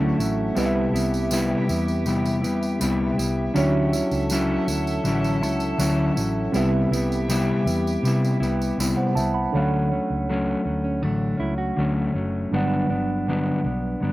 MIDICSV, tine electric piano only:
0, 0, Header, 1, 2, 480
1, 0, Start_track
1, 0, Key_signature, 2, "major"
1, 0, Tempo, 748130
1, 363, Time_signature, 4, 2, 24, 8
1, 9063, End_track
2, 0, Start_track
2, 0, Title_t, "Tine electric piano"
2, 0, Program_c, 0, 4
2, 0, Control_c, 0, 64, 127
2, 0, Note_on_c, 0, 62, 75
2, 0, Note_on_c, 0, 66, 66
2, 0, Note_on_c, 0, 73, 67
2, 0, Note_on_c, 0, 76, 74
2, 330, Note_off_c, 0, 62, 0
2, 334, Note_off_c, 0, 66, 0
2, 339, Note_off_c, 0, 73, 0
2, 347, Note_off_c, 0, 76, 0
2, 348, Note_on_c, 0, 60, 72
2, 361, Note_on_c, 0, 67, 68
2, 371, Control_c, 0, 64, 0
2, 371, Note_on_c, 0, 71, 66
2, 382, Note_on_c, 0, 75, 68
2, 414, Note_off_c, 0, 75, 0
2, 424, Note_on_c, 0, 76, 87
2, 480, Control_c, 0, 64, 127
2, 2248, Note_off_c, 0, 60, 0
2, 2254, Note_off_c, 0, 67, 0
2, 2260, Note_off_c, 0, 71, 0
2, 2273, Note_on_c, 0, 62, 73
2, 2280, Note_on_c, 0, 66, 70
2, 2286, Note_off_c, 0, 76, 0
2, 2289, Control_c, 0, 64, 0
2, 2294, Note_on_c, 0, 73, 72
2, 2303, Note_on_c, 0, 76, 85
2, 2411, Control_c, 0, 64, 127
2, 4170, Note_off_c, 0, 62, 0
2, 4173, Note_off_c, 0, 66, 0
2, 4180, Note_off_c, 0, 73, 0
2, 4185, Note_off_c, 0, 76, 0
2, 4186, Note_on_c, 0, 60, 73
2, 4196, Note_on_c, 0, 67, 66
2, 4207, Control_c, 0, 64, 0
2, 4208, Note_on_c, 0, 71, 70
2, 4219, Note_on_c, 0, 76, 76
2, 4303, Control_c, 0, 64, 127
2, 5617, Note_off_c, 0, 71, 0
2, 5622, Note_off_c, 0, 76, 0
2, 5753, Note_on_c, 0, 78, 58
2, 5758, Note_on_c, 0, 72, 57
2, 5870, Note_off_c, 0, 78, 0
2, 5872, Note_off_c, 0, 72, 0
2, 5873, Note_on_c, 0, 81, 72
2, 5880, Note_on_c, 0, 76, 62
2, 5989, Note_off_c, 0, 81, 0
2, 5993, Note_off_c, 0, 76, 0
2, 5994, Note_on_c, 0, 83, 64
2, 5996, Note_on_c, 0, 78, 58
2, 6086, Note_off_c, 0, 60, 0
2, 6091, Note_off_c, 0, 67, 0
2, 6105, Note_on_c, 0, 62, 65
2, 6114, Note_on_c, 0, 69, 61
2, 6125, Note_on_c, 0, 73, 59
2, 6128, Control_c, 0, 64, 0
2, 6133, Note_on_c, 0, 77, 60
2, 6167, Note_off_c, 0, 77, 0
2, 6169, Note_off_c, 0, 78, 0
2, 6177, Note_on_c, 0, 78, 73
2, 6224, Note_off_c, 0, 83, 0
2, 6244, Control_c, 0, 64, 127
2, 8007, Note_off_c, 0, 62, 0
2, 8012, Note_off_c, 0, 69, 0
2, 8017, Note_off_c, 0, 73, 0
2, 8028, Note_on_c, 0, 62, 65
2, 8036, Note_on_c, 0, 55, 66
2, 8043, Note_off_c, 0, 78, 0
2, 8046, Note_on_c, 0, 71, 61
2, 8047, Control_c, 0, 64, 0
2, 8057, Note_on_c, 0, 78, 80
2, 8181, Control_c, 0, 64, 127
2, 9063, Note_off_c, 0, 55, 0
2, 9063, Note_off_c, 0, 62, 0
2, 9063, Note_off_c, 0, 71, 0
2, 9063, Note_off_c, 0, 78, 0
2, 9063, End_track
0, 0, End_of_file